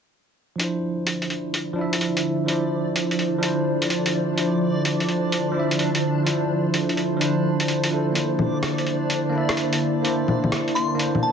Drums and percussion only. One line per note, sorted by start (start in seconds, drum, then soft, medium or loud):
0.60 closed hi-hat soft
1.07 closed hi-hat medium
1.22 closed hi-hat soft
1.30 closed hi-hat soft
1.54 closed hi-hat medium
1.93 closed hi-hat soft
2.01 closed hi-hat soft
2.17 closed hi-hat medium
2.48 closed hi-hat soft
2.96 closed hi-hat medium
3.11 closed hi-hat soft
3.19 closed hi-hat soft
3.43 closed hi-hat medium
3.82 closed hi-hat medium
3.90 closed hi-hat soft
4.06 closed hi-hat medium
4.38 closed hi-hat medium
4.85 closed hi-hat soft
5.00 closed hi-hat soft
5.09 closed hi-hat soft
5.32 closed hi-hat medium
5.71 closed hi-hat soft
5.79 closed hi-hat soft
5.95 closed hi-hat medium
6.27 closed hi-hat soft
6.74 closed hi-hat soft
6.89 closed hi-hat soft
6.97 closed hi-hat soft
7.21 closed hi-hat medium
7.60 closed hi-hat soft
7.68 closed hi-hat soft
7.84 closed hi-hat soft
8.15 closed hi-hat soft
8.39 low bongo medium
8.63 cross-stick medium
8.63 closed hi-hat soft
8.78 closed hi-hat soft
8.87 closed hi-hat soft
9.10 closed hi-hat medium
9.49 cross-stick loud
9.49 closed hi-hat soft
9.57 closed hi-hat soft
9.73 closed hi-hat medium
10.05 closed hi-hat soft
10.28 low bongo medium
10.44 low bongo medium
10.52 cross-stick loud
10.52 closed hi-hat soft
10.68 closed hi-hat soft
10.76 closed hi-hat soft
10.99 closed hi-hat medium
11.15 low bongo medium